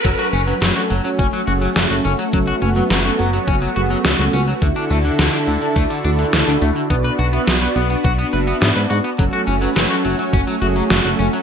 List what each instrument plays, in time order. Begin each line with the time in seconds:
0.04 analog synth bass F#1, clean electric guitar F#3, analog polysynth F#3 C#4 F#4 A4, analog synth pad A3 C#4 F#4, kick, closed hi-hat, crash
0.19 clean electric guitar F#4, closed hi-hat
0.33 analog synth bass F#1, clean electric guitar C#4, closed hi-hat
0.47 clean electric guitar F#3, analog polysynth F#3 C#4 F#4 B4, closed hi-hat
0.61 analog synth bass F#1, clean electric guitar F#3, snare, closed hi-hat
0.76 analog polysynth F#3 C#4 F#4 A4, clean electric guitar F#4, closed hi-hat
0.90 analog synth bass F#1, clean electric guitar F#3, closed hi-hat
1.04 clean electric guitar F#3, analog polysynth F#3 C#4 F#4 C#5, closed hi-hat
1.19 analog synth bass F#1, clean electric guitar C#4, kick, closed hi-hat
1.33 clean electric guitar F#3, closed hi-hat
1.47 analog synth bass F#1, analog polysynth F#3 C#4 F#4 G#4, clean electric guitar F#4, closed hi-hat
1.61 clean electric guitar F#3, closed hi-hat
1.76 analog synth bass F#1, clean electric guitar F#3, snare, closed hi-hat
1.90 analog synth bass F#1, analog polysynth F#3 C#4 F#4 A4, clean electric guitar F#4, closed hi-hat
2.05 analog synth bass F#1, clean electric guitar C#4, open hi-hat
2.19 clean electric guitar F#3, closed hi-hat
2.33 analog synth bass F#1, analog polysynth F#3 C#4 F#4 A4, clean electric guitar F#3, analog synth pad B3, kick, closed hi-hat
2.47 clean electric guitar F#4, closed hi-hat
2.62 analog synth bass F#1, clean electric guitar C#4, closed hi-hat
2.76 clean electric guitar F#3, analog polysynth F#3 C#4 F#4 B4, closed hi-hat
2.90 analog synth bass F#1, clean electric guitar F#3, snare, closed hi-hat
3.05 analog polysynth F#3 C#4 F#4 A4, clean electric guitar F#4, closed hi-hat
3.19 analog synth bass F#1, clean electric guitar F#3, closed hi-hat
3.33 clean electric guitar F#3, analog polysynth F#3 C#4 F#4 C#5, closed hi-hat
3.47 analog synth bass F#1, clean electric guitar C#4, kick, closed hi-hat
3.62 clean electric guitar F#3, closed hi-hat
3.76 analog synth bass F#1, analog polysynth F#3 C#4 F#4 G#4, clean electric guitar F#4, closed hi-hat
3.90 clean electric guitar F#3, closed hi-hat
4.05 analog synth bass C#2, clean electric guitar F#3, snare, closed hi-hat
4.19 analog synth bass C#2, analog polysynth F#3 C#4 F#4 A4, clean electric guitar F#4, closed hi-hat
4.33 analog synth bass C#2, clean electric guitar C#4, open hi-hat
4.48 clean electric guitar F#3, closed hi-hat
4.62 analog synth bass D2, analog polysynth D3 D4 E4 F#4 A4 E5, clean electric guitar D3, analog synth pad D3 D4 E4 A4, kick, closed hi-hat
4.76 clean electric guitar D4, closed hi-hat
4.90 analog synth bass D2, clean electric guitar A3, closed hi-hat
5.05 analog polysynth D3 D4 E4 F#4 A4 F#5, clean electric guitar D3, closed hi-hat
5.19 analog synth bass D2, clean electric guitar D3, snare, closed hi-hat
5.33 analog polysynth D3 D4 E4 F#4 A4 E5, clean electric guitar D4, closed hi-hat
5.47 analog synth bass D2, clean electric guitar D3, closed hi-hat
5.62 clean electric guitar D3, analog polysynth D3 D4 E4 F#4 A4 A5, closed hi-hat
5.76 analog synth bass D2, clean electric guitar A3, kick, closed hi-hat
5.90 clean electric guitar D3, closed hi-hat
6.04 analog synth bass D2, analog polysynth D3 D4 E4 F#4 A4 D5, clean electric guitar D4, closed hi-hat
6.19 clean electric guitar D3, closed hi-hat
6.33 analog synth bass D2, clean electric guitar D3, snare, closed hi-hat
6.47 analog synth bass D2, analog polysynth D3 D4 E4 F#4 A4 E5, clean electric guitar D4, closed hi-hat
6.62 analog synth bass D2, clean electric guitar A3, open hi-hat
6.76 clean electric guitar D3, closed hi-hat
6.90 analog synth bass B1, clean electric guitar B3, analog polysynth B3 F#4 B4 D5, analog synth pad B3 D4 F#4, kick, closed hi-hat
7.04 clean electric guitar B4, closed hi-hat
7.19 analog synth bass B1, clean electric guitar F#4, closed hi-hat
7.33 clean electric guitar B3, analog polysynth B3 F#4 B4 E5, closed hi-hat
7.47 analog synth bass B1, clean electric guitar B3, snare, closed hi-hat
7.61 analog polysynth B3 F#4 B4 D5, clean electric guitar B4, closed hi-hat
7.76 analog synth bass B1, clean electric guitar B3, closed hi-hat
7.90 clean electric guitar B3, analog polysynth B3 F#4 B4 F#5, closed hi-hat
8.04 analog synth bass B1, clean electric guitar F#4, kick, closed hi-hat
8.19 clean electric guitar B3, closed hi-hat
8.33 analog synth bass F#1, analog polysynth B3 F#4 B4 E5, clean electric guitar B4, closed hi-hat
8.47 clean electric guitar B3, closed hi-hat
8.61 analog synth bass G#2, clean electric guitar B3, snare, closed hi-hat
8.76 analog synth bass G#2, analog polysynth B3 F#4 B4 D5, clean electric guitar B4, closed hi-hat
8.90 analog synth bass G#2, clean electric guitar F#4, open hi-hat
9.04 clean electric guitar B3, closed hi-hat
9.18 analog synth bass F#1, clean electric guitar F#3, analog polysynth F#3 C#4 F#4 A4, analog synth pad A3 C#4 F#4, kick, closed hi-hat
9.33 clean electric guitar F#4, closed hi-hat
9.47 analog synth bass F#1, clean electric guitar C#4, closed hi-hat
9.61 clean electric guitar F#3, analog polysynth F#3 C#4 F#4 B4, closed hi-hat
9.76 analog synth bass F#1, clean electric guitar F#3, snare, closed hi-hat
9.90 analog polysynth F#3 C#4 F#4 A4, clean electric guitar F#4, closed hi-hat
10.04 analog synth bass F#1, clean electric guitar F#3, closed hi-hat
10.19 clean electric guitar F#3, analog polysynth F#3 C#4 F#4 C#5, closed hi-hat
10.33 analog synth bass F#1, clean electric guitar C#4, kick, closed hi-hat
10.47 clean electric guitar F#3, closed hi-hat
10.62 analog synth bass F#1, analog polysynth F#3 C#4 F#4 G#4, clean electric guitar F#4, closed hi-hat
10.76 clean electric guitar F#3, closed hi-hat
10.90 analog synth bass F#1, clean electric guitar F#3, snare, closed hi-hat
11.04 analog synth bass F#1, analog polysynth F#3 C#4 F#4 A4, clean electric guitar F#4, closed hi-hat
11.19 analog synth bass F#1, clean electric guitar C#4, open hi-hat
11.33 clean electric guitar F#3, closed hi-hat